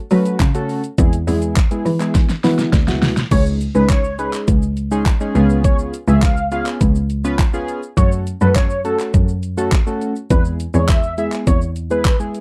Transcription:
0.11 cello F#3, synth keys A3 C#4 F#4 B4, open hi-hat, shaker
0.25 closed hi-hat, shaker
0.40 cello C#3, kick, clap, closed hi-hat, shaker
0.54 synth keys A3 C#4 F#4 A4, closed hi-hat, shaker
0.69 open hi-hat, shaker
0.84 closed hi-hat, shaker
0.98 cello E2, synth keys G#3 B3 E4 G#4, kick, closed hi-hat, shaker
1.13 closed hi-hat, shaker
1.27 cello E2, synth keys G#3 B3 E4 G#4, open hi-hat, shaker
1.42 closed hi-hat, shaker
1.57 kick, clap, closed hi-hat, shaker
1.71 synth keys G#3 B3 E4 G#4, closed hi-hat, shaker
1.86 cello E3, open hi-hat, shaker
2.00 synth keys G#3 B3 E4 G#4, clap, closed hi-hat, shaker
2.15 kick, snare, closed hi-hat, shaker
2.29 snare, closed hi-hat, shaker
2.44 cello E3, synth keys G#3 B3 E4 F#4, snare, open hi-hat, shaker
2.59 snare, closed hi-hat, shaker
2.73 cello D2, kick, snare, closed hi-hat, shaker
2.87 synth keys G#3 B3 E4 F#4, snare, closed hi-hat, shaker
3.02 snare, open hi-hat, shaker
3.17 snare, closed hi-hat, shaker
3.31 cello C#2, synth keys G#3 C#4 D#4 G#4, analog synth lead C#5, kick, closed hi-hat, crash, shaker
3.46 shaker
3.61 closed hi-hat, shaker
3.75 cello C#2, synth keys G#3 C#4 D#4 G#4, analog synth lead B4, shaker
3.90 analog synth lead C#5, kick, clap, closed hi-hat, shaker
4.04 shaker
4.18 synth keys G#3 C#4 D#4 G#4, analog synth lead B4, closed hi-hat, shaker
4.33 clap, shaker
4.48 cello C#2, kick, closed hi-hat, shaker
4.63 shaker
4.77 closed hi-hat, shaker
4.91 synth keys G#3 C#4 D#4 G#4, shaker
5.06 kick, clap, closed hi-hat, shaker
5.20 synth keys G#3 C#4 D#4 G#4, shaker
5.35 cello C#2, synth keys B3 C#4 F4 G#4, closed hi-hat, shaker
5.50 shaker
5.64 analog synth lead C#5, kick, closed hi-hat, shaker
5.79 shaker
5.94 closed hi-hat, shaker
6.08 cello C#2, synth keys B3 C#4 F4 G#4, analog synth lead E5, shaker
6.23 analog synth lead F5, kick, clap, closed hi-hat, shaker
6.37 shaker
6.51 synth keys B3 C#4 F4 G#4, analog synth lead F5, closed hi-hat, shaker
6.66 clap, shaker
6.81 cello C#2, kick, closed hi-hat, shaker
6.95 shaker
7.10 closed hi-hat, shaker
7.24 synth keys B3 C#4 F4 B4, shaker
7.39 kick, clap, closed hi-hat, shaker
7.53 synth keys B3 C#4 F4 G#4, shaker
7.68 closed hi-hat, shaker
7.83 shaker
7.97 cello F#2, synth keys A3 C#4 F#4 A4, analog synth lead C#5, kick, closed hi-hat, shaker
8.12 shaker
8.27 closed hi-hat, shaker
8.41 cello F#2, synth keys A3 C#4 F#4 A4, analog synth lead B4, shaker
8.56 analog synth lead C#5, kick, clap, closed hi-hat, shaker
8.70 shaker
8.85 synth keys A3 C#4 F#4 A4, analog synth lead A4, closed hi-hat, shaker
8.99 clap, shaker
9.14 cello F#2, kick, closed hi-hat, shaker
9.28 shaker
9.43 closed hi-hat, shaker
9.57 synth keys A3 C#4 F#4 A4, shaker
9.72 kick, clap, closed hi-hat, shaker
9.87 synth keys A3 C#4 F#4 A4, shaker
10.01 closed hi-hat, shaker
10.16 shaker
10.30 cello E2, synth keys G#3 B3 E4 G#4, analog synth lead B4, kick, closed hi-hat, shaker
10.45 shaker
10.60 closed hi-hat, shaker
10.74 cello E2, synth keys G#3 B3 E4 G#4, analog synth lead C#5, shaker
10.89 analog synth lead E5, kick, clap, closed hi-hat, shaker
11.03 shaker
11.18 synth keys G#3 B3 E4 G#4, analog synth lead E5, closed hi-hat, shaker
11.32 clap, shaker
11.47 cello E2, analog synth lead C#5, kick, closed hi-hat, shaker
11.62 shaker
11.76 closed hi-hat, shaker
11.90 synth keys G#3 B3 E4 G#4, analog synth lead B4, shaker
12.05 kick, clap, closed hi-hat, shaker
12.20 synth keys G#3 B3 E4 G#4, shaker
12.34 closed hi-hat, shaker

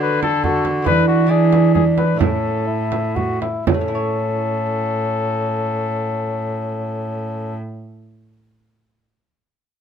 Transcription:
Already playing: lute D3 A3 D4 F#4, cello D3, bassoon F#4
0.02 cornet B4
0.23 cornet A4, frame drum
0.44 bassoon F#4, cornet A4, frame drum
0.65 frame drum
0.82 lute E3 A3 D4 E4, cornet B4
0.86 cello E3, bassoon D4, frame drum
1.08 cornet F#4
1.26 lute B3 D4 E4, cornet G#4
1.31 bassoon D4
1.53 frame drum
1.74 bassoon D4, cornet G#4, frame drum
1.98 cornet B4, frame drum
2.16 cello A2, lute A2 A3 C#4 E4, cornet A4
2.20 bassoon C#4, frame drum
2.67 bassoon E4
2.92 frame drum
3.16 bassoon F#4, frame drum
3.42 bassoon E4, frame drum
3.67 lute A2, cello A2, bassoon C#4, cornet A4, frame drum
3.74 lute A3
3.81 lute C#4
3.88 lute E4
3.95 lute C#5

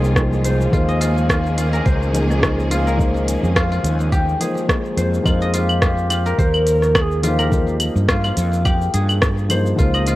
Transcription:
Already playing: fretless electric bass C2, string section D#3 A#3 C#4 F4 G#4, felt piano F3 A#3 D#4 G#4 C5, guzheng F4 G#4 A#4
0.05 cabasa
0.15 felt piano F3 G#3 A#3 D#4 C5, kick, cross-stick, cabasa
0.33 cabasa
0.45 guzheng C5, closed hi-hat, cabasa
0.61 cabasa
0.71 fretless electric bass D#2, string section D#3 G#3 A#3 C#4 G#4, felt piano F3 A#3 D#4 G#4, guzheng F4, kick, cabasa
0.75 felt piano C5
0.88 guzheng D#5, cabasa
1.01 guzheng F4, closed hi-hat, cabasa
1.18 cabasa
1.29 guzheng F4, kick, cross-stick, cabasa
1.46 cabasa
1.58 guzheng F4, closed hi-hat, cabasa
1.73 guzheng A#4, cabasa
1.86 fretless electric bass C#2, guzheng C5, kick, cabasa
2.03 cabasa
2.13 felt piano F3 A#3 D#4 G#4 C5, closed hi-hat, cabasa
2.30 cross-stick, cabasa
2.41 felt piano F3 A#3 D#4 G#4 C5, kick, cross-stick, cabasa
2.59 cabasa
2.71 guzheng F4, closed hi-hat, cabasa
2.87 guzheng A#4, cabasa
2.97 felt piano F3 A#3 D#4 G#4, kick, cabasa
3.01 felt piano C5
3.16 cabasa
3.28 closed hi-hat, cabasa
3.43 fretless electric bass F2, cabasa
3.56 guzheng F4, kick, cross-stick, cabasa
3.72 guzheng F4, cabasa
3.84 fretless electric bass D#2, closed hi-hat, cabasa
4.00 cabasa
4.12 guzheng G4, kick, cabasa
4.29 cabasa
4.40 felt piano F3 A#3 D#4 G#4 C5, guzheng G#4, closed hi-hat, cabasa
4.57 cabasa
4.68 felt piano F3 G#3 A#3 D#4 C5, kick, cross-stick, cabasa
4.85 cabasa
4.97 fretless electric bass F2, guzheng C5, closed hi-hat, cabasa
5.14 cabasa
5.23 fretless electric bass F2, felt piano F3 G#3 A#3 D#4 C5, guzheng F4, kick, cabasa, claves
5.42 guzheng D#5, cabasa
5.54 guzheng F4, native american-style wooden flute G4, closed hi-hat, cabasa
5.69 cabasa, claves
5.82 guzheng F4, kick, cross-stick, cabasa
5.98 cabasa
6.10 guzheng F4, closed hi-hat, cabasa, claves
6.26 guzheng A#4, cabasa
6.39 fretless electric bass D#2, native american-style wooden flute A#4, guzheng C5, kick, cabasa
6.54 cabasa, claves
6.67 closed hi-hat, cabasa
6.83 cross-stick, cabasa
6.95 native american-style wooden flute A#4, kick, cross-stick, cabasa, claves
7.01 native american-style wooden flute G#4
7.12 cabasa
7.23 felt piano F3 A#3 D#4 G#4 C5, guzheng F4, native american-style wooden flute G4, closed hi-hat, cabasa
7.39 guzheng A#4, cabasa, claves
7.50 felt piano F3 A#3 D#4 G#4, kick, cabasa
7.54 felt piano C5
7.68 cabasa
7.80 closed hi-hat, cabasa, claves
7.96 fretless electric bass G2, cabasa
8.09 guzheng F4, kick, cross-stick, cabasa
8.24 guzheng F4, cabasa, claves
8.37 fretless electric bass F2, closed hi-hat, cabasa
8.53 cabasa
8.65 guzheng G4, kick, cabasa, claves
8.81 cabasa
8.94 fretless electric bass G2, guzheng G#4, closed hi-hat, cabasa
9.09 cabasa, claves
9.22 kick, cross-stick, cabasa
9.38 cabasa
9.49 felt piano F3 A#3 D#4 G#4 C5, guzheng C5, closed hi-hat, cabasa, claves
9.66 cabasa
9.76 fretless electric bass C#2, felt piano F3 A#3 D#4 G#4, guzheng F4, kick, cabasa
9.80 felt piano C5
9.94 guzheng D#5, cabasa, claves
10.07 guzheng F4, closed hi-hat, cabasa

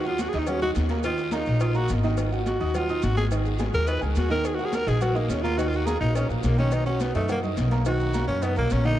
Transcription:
Already playing: upright bass D#2
0.05 upright piano F#3 F#4 F#5, tenor saxophone F4, high conga, maracas
0.19 tenor saxophone F#4, cowbell, high conga, short guiro, maracas
0.29 tenor saxophone G#4, cowbell, short guiro, maracas
0.34 upright bass D#2, upright piano D#4 D#5 D#6
0.39 tenor saxophone D#4
0.47 upright piano F#3 F#4 F#5, tenor saxophone C#4, cowbell, high conga, low conga, long guiro, maracas
0.61 upright piano D#4 D#5 D#6, tenor saxophone F#4, high conga, low conga, maracas
0.75 upright bass D#2, cowbell, high conga, short guiro, maracas
0.89 upright piano A#3 A#4 A#5, cowbell, high conga, short guiro, maracas
1.03 upright piano D#3 D#4 D#5, tenor saxophone F4, cowbell, long guiro, maracas
1.18 high conga, maracas
1.32 upright piano A#3 A#4 A#5, tenor saxophone D#4, cowbell, high conga, short guiro, maracas
1.45 upright bass A#1, high conga, short guiro, maracas
1.60 upright piano D#4 D#5 D#6, tenor saxophone F4, cowbell, high conga, long guiro, maracas
1.74 upright piano A#3 A#4 A#5, tenor saxophone F#4, high conga, maracas
1.88 upright bass G#1, cowbell, high conga, short guiro, maracas
2.03 upright piano D#3 D#4 D#5, high conga, short guiro, maracas
2.17 cowbell, high conga, long guiro, maracas
2.31 upright piano F#3 F#4 F#5, high conga, maracas
2.46 tenor saxophone F#4, cowbell, high conga, short guiro, maracas
2.60 upright bass D#2, upright piano D#4 D#5 D#6, cowbell, short guiro, maracas
2.74 upright piano F#3 F#4 F#5, tenor saxophone F4, cowbell, high conga, low conga, long guiro, maracas
2.89 upright piano D#4 D#5 D#6, high conga, maracas
3.02 upright bass G#1, tenor saxophone F#4, cowbell, high conga, short guiro, maracas
3.16 upright piano G#3 G#4 G#5, tenor saxophone G#4, cowbell, high conga, short guiro, maracas
3.31 upright piano D#3 D#4 D#5, cowbell, high conga, long guiro, maracas
3.45 high conga, maracas
3.59 upright piano G#3 G#4 G#5, cowbell, high conga, short guiro, maracas
3.73 upright bass D#2, tenor saxophone A#4, high conga, short guiro, maracas
3.87 upright piano D#4 D#5 D#6, tenor saxophone B4, cowbell, high conga, maracas
4.01 upright bass C#2, upright piano G#3 G#4 G#5, tenor saxophone D#4, high conga, maracas
4.16 upright bass D#2, tenor saxophone F#4, cowbell, high conga, short guiro, maracas
4.30 upright piano D#3 D#4 D#5, tenor saxophone A#4, high conga, short guiro, maracas
4.45 tenor saxophone G#4, cowbell, high conga, long guiro, maracas
4.55 upright piano F#3 F#4, tenor saxophone F#4, high conga, maracas
4.59 upright piano F#5
4.65 tenor saxophone G#4
4.73 tenor saxophone A#4, cowbell, high conga, short guiro, maracas
4.87 upright bass A#1, upright piano D#4 D#5 D#6, tenor saxophone G#4, cowbell, short guiro, maracas
5.01 upright piano F#3 F#4 F#5, tenor saxophone F#4, cowbell, high conga, low conga, long guiro, maracas
5.15 tenor saxophone A#3, upright piano D#4 D#5 D#6, high conga, low conga, maracas
5.29 upright bass D#2, tenor saxophone C#4, cowbell, high conga, short guiro, maracas
5.42 upright piano A#3 A#4 A#5, tenor saxophone F4, cowbell, high conga, short guiro, maracas
5.57 upright piano D#3 D#4 D#5, tenor saxophone F#4, cowbell, high conga, long guiro, maracas
5.68 tenor saxophone F4, high conga
5.73 tenor saxophone F#4, maracas
5.86 upright piano A#3 A#4 A#5, tenor saxophone G#4, cowbell, high conga, short guiro, maracas
6.00 upright bass A#1, tenor saxophone D#4, high conga, short guiro, maracas
6.15 tenor saxophone C#4, upright piano D#4 D#5 D#6, cowbell, high conga, maracas
6.29 upright bass A#1, tenor saxophone F3, upright piano A#3 A#4 A#5, high conga, maracas
6.43 upright bass B1, tenor saxophone A#3, cowbell, high conga, short guiro, maracas
6.58 upright piano D#3 D#4 D#5, tenor saxophone C#4, high conga, short guiro, maracas
6.71 tenor saxophone D#4, cowbell, high conga, long guiro, maracas
6.86 upright piano F#3 F#4 F#5, tenor saxophone C#4, high conga, maracas
7.00 tenor saxophone B3, cowbell, high conga, short guiro, maracas
7.14 upright bass F#2, tenor saxophone A3, upright piano D#4 D#5 D#6, cowbell, high conga, short guiro, maracas
7.28 upright piano F#3 F#4 F#5, tenor saxophone A#3, cowbell, high conga, low conga, long guiro, maracas
7.43 upright piano D#4 D#5 D#6, high conga, low conga, maracas
7.57 upright bass B1, cowbell, high conga, short guiro, maracas
7.71 upright piano A#3 A#4 A#5, cowbell, high conga, short guiro, maracas
7.85 upright piano D#3 D#4 D#5, tenor saxophone F#4, cowbell, long guiro, maracas
8.00 high conga, maracas
8.13 upright piano A#3 A#4 A#5, cowbell, high conga, short guiro, maracas
8.28 upright bass F#2, tenor saxophone C#4, high conga, short guiro, maracas
8.42 tenor saxophone B3, upright piano D#4 D#5 D#6, cowbell, high conga, long guiro, maracas
8.56 upright bass B1, upright piano A#3 A#4 A#5, tenor saxophone A#3, high conga, maracas
8.70 upright bass A#1, tenor saxophone C#4, cowbell, high conga, short guiro, maracas
8.84 upright piano D3 D4 D5, tenor saxophone D#4, high conga, short guiro, maracas

